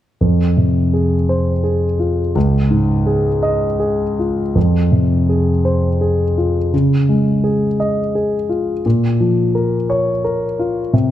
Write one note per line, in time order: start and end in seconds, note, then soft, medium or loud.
0.21 2.31 F2 soft
0.57 1.15 C3 soft
0.93 1.50 G#4 soft
1.29 1.86 C5 soft
1.64 2.20 G#4 soft
1.99 2.35 F4 soft
2.35 4.52 C#2 soft
2.71 3.28 G#2 soft
3.06 3.65 G#4 soft
3.43 4.03 D#5 soft
3.80 4.41 G#4 soft
4.19 4.56 F4 soft
4.55 6.68 F2 soft
4.92 5.50 C3 soft
5.29 5.87 G#4 soft
5.65 6.23 C5 soft
6.01 6.58 G#4 soft
6.38 6.73 F4 soft
6.73 8.81 C#3 soft
7.09 7.65 G#3 soft
7.44 8.00 G#4 soft
7.80 8.36 D#5 soft
8.15 8.71 G#4 soft
8.49 8.84 F4 soft
8.86 10.89 A#2 soft
9.20 9.76 F3 soft
9.55 10.10 A#4 soft
9.90 10.45 C#5 soft
10.24 10.79 A#4 soft
10.59 10.93 F4 soft
10.93 11.11 C3 soft